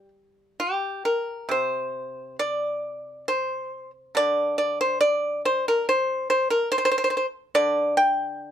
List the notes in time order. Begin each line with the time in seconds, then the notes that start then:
Already playing: G3
0.60 G4
1.05 A#4
1.49 C3 C5
2.39 D5
3.28 C5
4.15 D3 D5
4.58 D5
4.81 C5
5.01 D5
5.45 C5
5.68 A#4
5.89 C5
6.30 C5
6.50 A#4
6.72 C5
6.78 C5
6.85 C5
6.92 C5
6.98 C5
7.04 C5
7.10 C5
7.17 C5
7.55 D3 D5
7.97 G5